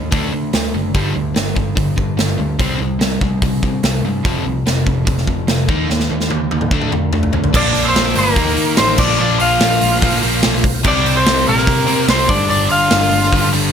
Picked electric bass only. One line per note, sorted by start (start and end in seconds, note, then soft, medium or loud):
0.13 0.30 D2 medium
0.34 0.51 D3 medium
0.54 0.71 D2 medium
0.75 0.91 F#1 medium
0.95 1.12 G1 medium
1.16 1.33 D2 medium
1.36 1.53 G1 medium
1.56 1.73 G1 medium
1.77 1.94 G1 medium
1.98 2.15 G1 medium
2.16 2.34 G1 medium
2.39 2.56 D2 medium
2.60 2.77 C2 medium
2.80 2.97 C2 medium
3.00 3.17 C2 medium
3.22 3.39 C2 medium
3.42 3.59 C2 medium
3.63 3.80 C3 medium
3.83 4.00 C2 medium
4.03 4.20 G2 medium
4.25 4.42 F1 medium
4.45 4.62 C2 medium
4.66 4.83 F1 medium
4.86 5.04 F1 medium
5.07 5.24 F1 medium
5.28 5.45 F1 medium
5.49 5.66 F1 medium
5.69 5.86 D#2 medium
5.90 6.07 D#2 medium
6.11 6.28 D#2 medium
6.32 6.49 D#2 medium
6.52 6.69 D#2 medium
6.71 6.88 D2 medium
6.92 7.10 D3 medium
7.13 7.30 D2 medium
7.33 7.51 D2 medium
7.54 7.73 A#1 medium
7.75 7.94 A#1 medium
7.95 8.14 A#1 medium
8.16 8.35 G1 medium
8.37 8.56 D#2 medium
8.58 8.76 D#3 medium
8.79 8.97 A1 medium
8.99 9.18 A#1 medium
9.20 9.39 A#1 medium
9.40 9.59 A#1 medium
9.60 9.79 A#1 medium
9.82 10.01 A#1 medium
10.02 10.21 A#1 medium
10.24 10.42 A#1 medium
10.45 10.82 B1 medium
10.84 11.03 C2 loud
11.06 11.24 C2 medium
11.27 11.45 C2 medium
11.48 11.66 A#1 medium
11.68 11.86 C3 medium
11.87 12.06 C3 medium
12.08 12.27 C2 medium
12.29 12.48 G1 medium
12.51 12.69 G1 medium
12.70 12.89 G1 medium
12.91 13.10 G1 medium
13.12 13.30 G1 medium
13.33 13.51 G1 medium
13.53 13.72 G1 medium